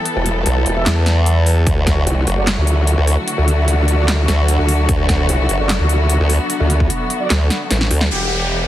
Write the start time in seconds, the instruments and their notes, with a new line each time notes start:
Already playing: string section E3 G3 B3 A4, ambient pad E4 B4 G5
0.06 closed hi-hat
0.16 wobble bass E1
0.26 closed hi-hat
0.46 wobble bass B1, closed hi-hat
0.66 wobble bass E1, closed hi-hat
0.76 brass ensemble G4 B4 E5
0.86 wobble bass E2, snare, clap, closed hi-hat
1.06 snare, closed hi-hat
1.26 closed hi-hat
1.46 open hi-hat
1.66 wobble bass D2, string section D3 F#3 A3 F#4, ambient pad D4, kick, closed hi-hat
1.86 ambient pad A4 E5 F#5, kick, snare, closed hi-hat
2.07 wobble bass C2, closed hi-hat
2.27 wobble bass F#1, closed hi-hat
2.37 wobble bass F#1, brass ensemble F#4 A4 D5
2.47 snare, clap, closed hi-hat
2.57 wobble bass D2
2.67 closed hi-hat
2.87 closed hi-hat
2.98 wobble bass D2
3.07 open hi-hat
3.28 closed hi-hat
3.38 wobble bass D2
3.48 closed hi-hat
3.68 wobble bass D2, closed hi-hat
3.88 closed hi-hat
3.98 brass ensemble F#4 A4 D5
4.08 snare, clap, closed hi-hat
4.28 wobble bass D2, snare, closed hi-hat
4.48 closed hi-hat
4.59 wobble bass D2
4.69 open hi-hat
4.89 wobble bass D2, string section B3, kick, closed hi-hat
5.09 kick, snare, closed hi-hat
5.29 wobble bass C2, closed hi-hat
5.49 wobble bass F#1, closed hi-hat
5.59 wobble bass F#1, brass ensemble F#4 A4 D5
5.69 snare, clap, closed hi-hat
5.80 wobble bass D2
5.89 closed hi-hat
6.10 closed hi-hat
6.20 wobble bass D2
6.30 open hi-hat
6.50 closed hi-hat
6.60 wobble bass D2
6.70 closed hi-hat
6.80 kick
6.90 closed hi-hat
7.10 closed hi-hat
7.21 brass ensemble F#4 A4 D5
7.30 wobble bass D2, snare, clap, closed hi-hat
7.50 snare, closed hi-hat
7.71 wobble bass A1, snare, closed hi-hat
7.81 snare
7.91 wobble bass D2, open hi-hat
8.01 snare
8.11 wobble bass E1, string section E3 G3 B3 F#5, ambient pad E4, supersaw synth G4, closed hi-hat, crash, downlifter
8.28 ambient pad B4, closed hi-hat
8.51 closed hi-hat